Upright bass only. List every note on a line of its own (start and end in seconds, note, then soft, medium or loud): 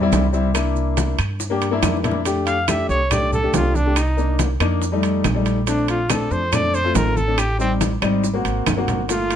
0.12 1.13 C2 medium
1.19 1.79 G2 medium
1.83 2.83 F2 medium
2.89 3.49 C2 medium
3.53 4.54 C2 medium
4.60 5.20 F2 medium
5.24 6.25 A#1 medium
6.31 6.91 F2 medium
6.95 7.96 A1 medium
8.02 8.42 G#1 medium
8.45 8.65 G#1 medium
8.66 9.36 G1 medium